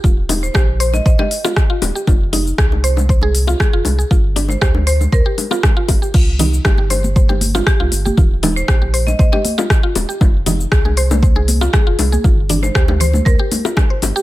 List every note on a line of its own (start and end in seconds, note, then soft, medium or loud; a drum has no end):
0.04 0.49 D#1 loud
0.04 0.16 F4 medium
0.04 kick loud
0.04 low bongo medium
0.04 shaker soft
0.29 0.41 D#4 medium
0.29 open hi-hat medium
0.29 high bongo medium
0.29 low bongo medium
0.29 shaker medium
0.43 0.51 C5 medium
0.43 shaker soft
0.54 1.00 A#1 loud
0.54 0.67 G4 loud
0.54 0.64 C5 medium
0.54 kick loud
0.54 cross-stick loud
0.54 low bongo medium
0.54 shaker soft
0.80 0.92 C5 loud
0.80 open hi-hat medium
0.80 shaker medium
0.93 1.01 D#5 medium
0.93 low bongo medium
0.93 shaker soft
1.06 1.15 A#1 loud
1.06 1.18 C5 medium
1.06 1.14 D#5 medium
1.06 kick loud
1.06 shaker soft
1.19 1.30 G4 loud
1.19 1.90 D#5 medium
1.19 low bongo medium
1.31 open hi-hat medium
1.31 shaker medium
1.44 1.56 F4 loud
1.44 high bongo loud
1.44 low bongo medium
1.44 shaker soft
1.56 kick loud
1.56 cross-stick loud
1.56 shaker soft
1.70 1.76 F4 loud
1.82 1.92 D#1 medium
1.82 open hi-hat medium
1.82 high bongo loud
1.82 low bongo medium
1.82 shaker medium
1.95 2.06 G4 medium
1.95 shaker medium
2.07 2.53 F1 loud
2.07 2.19 F4 medium
2.07 kick loud
2.07 low bongo medium
2.07 shaker soft
2.33 2.45 D#4 medium
2.33 open hi-hat medium
2.33 high bongo medium
2.33 low bongo medium
2.33 shaker medium
2.47 shaker soft
2.58 3.54 C2 loud
2.58 2.70 G#4 loud
2.58 kick loud
2.58 cross-stick loud
2.58 shaker soft
2.72 low bongo medium
2.84 2.96 C5 loud
2.84 open hi-hat medium
2.84 shaker medium
2.97 low bongo medium
2.97 shaker soft
3.09 3.21 C5 medium
3.09 kick loud
3.09 shaker soft
3.21 3.33 G#4 loud
3.21 low bongo medium
3.35 open hi-hat medium
3.35 shaker medium
3.47 3.59 F4 loud
3.47 high bongo medium
3.47 shaker soft
3.60 3.76 G#4 medium
3.60 kick loud
3.60 cross-stick loud
3.60 low bongo medium
3.60 shaker soft
3.73 3.82 F1 medium
3.73 3.80 F4 loud
3.85 4.04 C2 medium
3.85 open hi-hat medium
3.85 low bongo medium
3.85 shaker medium
3.99 4.09 G#4 medium
3.99 shaker soft
4.11 4.56 G1 loud
4.11 4.23 F4 medium
4.11 kick loud
4.11 low bongo medium
4.11 shaker soft
4.36 4.48 D4 medium
4.36 open hi-hat medium
4.36 high bongo medium
4.36 shaker medium
4.48 4.57 C5 medium
4.48 low bongo medium
4.48 shaker soft
4.61 5.07 D2 loud
4.61 4.74 G4 loud
4.61 4.70 C5 medium
4.61 kick loud
4.61 cross-stick loud
4.61 shaker soft
4.75 low bongo medium
4.87 4.99 C5 loud
4.87 5.04 C5 medium
4.87 open hi-hat medium
4.87 shaker medium
5.01 low bongo medium
5.01 shaker soft
5.12 5.22 D2 loud
5.12 5.84 A#4 medium
5.12 5.25 C5 medium
5.12 kick loud
5.12 shaker soft
5.26 5.37 G4 loud
5.38 open hi-hat medium
5.38 low bongo medium
5.38 shaker medium
5.51 5.63 F4 loud
5.51 high bongo loud
5.51 shaker soft
5.63 kick loud
5.63 cross-stick loud
5.63 low bongo medium
5.63 shaker soft
5.77 5.83 F4 loud
5.88 5.98 G1 medium
5.88 kick medium
5.88 open hi-hat loud
5.88 high bongo loud
5.88 low bongo medium
5.88 shaker medium
6.02 6.13 G4 medium
6.02 shaker medium
6.14 6.60 C2 loud
6.14 6.26 F4 medium
6.14 kick loud
6.14 crash medium
6.14 muted conga medium
6.14 shaker soft
6.39 6.52 D#4 medium
6.39 open hi-hat medium
6.39 high bongo medium
6.39 low bongo medium
6.39 muted conga soft
6.39 low conga loud
6.39 shaker medium
6.54 shaker medium
6.65 7.61 G1 loud
6.65 6.77 G4 loud
6.65 kick loud
6.65 cross-stick loud
6.65 low bongo medium
6.65 shaker soft
6.78 6.85 G4 medium
6.78 muted conga soft
6.90 7.02 C5 loud
6.90 open hi-hat medium
6.90 low bongo medium
6.90 shaker medium
7.04 muted conga soft
7.04 high conga loud
7.04 shaker soft
7.16 7.28 C5 medium
7.16 kick loud
7.16 high conga medium
7.16 shaker soft
7.29 7.40 G4 loud
7.29 low bongo medium
7.29 muted conga medium
7.41 open hi-hat medium
7.41 high conga loud
7.41 shaker medium
7.55 7.66 F4 loud
7.55 high bongo loud
7.55 low bongo medium
7.55 muted conga soft
7.55 shaker soft
7.67 7.83 G4 medium
7.67 kick loud
7.67 cross-stick loud
7.67 shaker soft
7.80 7.89 C2 medium
7.80 7.87 F4 loud
7.80 low bongo medium
7.92 8.11 G1 medium
7.92 open hi-hat loud
7.92 muted conga soft
7.92 shaker loud
8.05 8.16 G4 medium
8.05 high conga loud
8.05 shaker medium
8.17 8.63 D#1 loud
8.17 8.30 F4 medium
8.17 kick loud
8.17 low bongo medium
8.17 muted conga soft
8.17 low conga medium
8.17 shaker soft
8.43 8.55 D#4 medium
8.43 open hi-hat medium
8.43 high bongo medium
8.43 low bongo loud
8.43 muted conga soft
8.43 low conga medium
8.43 shaker medium
8.56 8.64 C5 medium
8.56 shaker medium
8.68 9.14 A#1 loud
8.68 8.80 G4 loud
8.68 kick loud
8.68 cross-stick loud
8.68 low bongo medium
8.68 shaker soft
8.82 8.88 G4 medium
8.82 muted conga soft
8.94 9.06 C5 loud
8.94 open hi-hat medium
8.94 shaker medium
9.07 9.15 D#5 medium
9.07 low bongo medium
9.07 muted conga soft
9.07 high conga loud
9.07 shaker medium
9.19 9.29 A#1 loud
9.19 9.31 C5 medium
9.19 9.28 D#5 medium
9.19 kick loud
9.19 high conga medium
9.19 shaker soft
9.32 9.43 G4 loud
9.32 10.03 D#5 medium
9.32 low bongo medium
9.32 muted conga medium
9.45 open hi-hat medium
9.45 high conga loud
9.45 shaker medium
9.58 9.69 F4 loud
9.58 high bongo loud
9.58 low bongo medium
9.58 muted conga soft
9.58 shaker soft
9.70 kick loud
9.70 cross-stick loud
9.70 shaker soft
9.83 9.90 F4 loud
9.95 10.05 D#1 medium
9.95 open hi-hat medium
9.95 high bongo loud
9.95 low bongo medium
9.95 muted conga medium
9.95 high conga medium
9.95 shaker loud
10.09 10.20 G4 medium
10.09 shaker medium
10.21 10.66 F1 loud
10.21 10.33 F4 medium
10.21 kick loud
10.21 low bongo loud
10.21 muted conga soft
10.21 shaker soft
10.46 10.58 D#4 medium
10.46 open hi-hat medium
10.46 high bongo medium
10.46 low bongo medium
10.46 muted conga soft
10.46 low conga loud
10.46 shaker loud
10.60 shaker medium
10.72 11.68 C2 loud
10.72 10.84 G#4 loud
10.72 kick loud
10.72 cross-stick loud
10.72 shaker soft
10.85 10.92 G#4 medium
10.85 low bongo medium
10.85 muted conga soft
10.97 11.09 C5 loud
10.97 open hi-hat medium
10.97 shaker loud
11.11 low bongo loud
11.11 muted conga soft
11.11 high conga loud
11.11 shaker medium
11.23 11.35 C5 medium
11.23 kick loud
11.23 high conga medium
11.23 shaker soft
11.36 11.47 G#4 loud
11.36 low bongo medium
11.36 muted conga soft
11.48 open hi-hat medium
11.48 high conga loud
11.48 shaker loud
11.61 11.73 F4 loud
11.61 high bongo loud
11.61 shaker medium
11.73 11.90 G#4 medium
11.73 kick loud
11.73 cross-stick loud
11.73 low bongo medium
11.73 shaker soft
11.87 11.95 F1 medium
11.87 11.93 F4 loud
11.99 12.18 C2 medium
11.99 open hi-hat medium
11.99 low bongo loud
11.99 muted conga medium
11.99 shaker loud
12.12 12.23 G#4 medium
12.12 high conga loud
12.12 shaker medium
12.24 12.70 G1 medium
12.24 12.36 F4 medium
12.24 kick loud
12.24 low bongo medium
12.24 muted conga soft
12.24 low conga medium
12.24 shaker soft
12.49 12.62 D4 medium
12.49 open hi-hat medium
12.49 high bongo medium
12.49 muted conga soft
12.49 low conga medium
12.49 shaker medium
12.63 12.71 C5 medium
12.63 low bongo medium
12.63 shaker medium
12.75 13.21 D2 loud
12.75 12.87 G4 loud
12.75 12.84 C5 medium
12.75 kick loud
12.75 cross-stick loud
12.75 shaker soft
12.88 12.95 G4 medium
12.88 low bongo loud
12.88 muted conga medium
13.00 13.17 C5 medium
13.00 13.13 C5 loud
13.00 open hi-hat medium
13.00 low conga medium
13.00 shaker loud
13.13 low bongo medium
13.13 muted conga soft
13.13 high conga loud
13.13 shaker medium
13.25 13.36 D2 loud
13.25 13.97 A#4 medium
13.25 13.38 C5 medium
13.25 kick loud
13.25 shaker soft
13.39 13.50 G4 loud
13.39 muted conga soft
13.52 open hi-hat medium
13.52 low bongo medium
13.52 high conga loud
13.52 shaker medium
13.65 13.76 F4 medium
13.65 high bongo loud
13.65 muted conga soft
13.65 shaker medium
13.77 kick loud
13.77 cross-stick loud
13.77 low bongo loud
13.77 shaker soft
13.90 13.97 C5 medium
14.02 14.12 G1 medium
14.02 open hi-hat medium
14.02 high bongo loud
14.02 low bongo medium
14.02 muted conga soft
14.02 high conga medium
14.02 shaker loud
14.16 14.22 G4 loud
14.16 shaker medium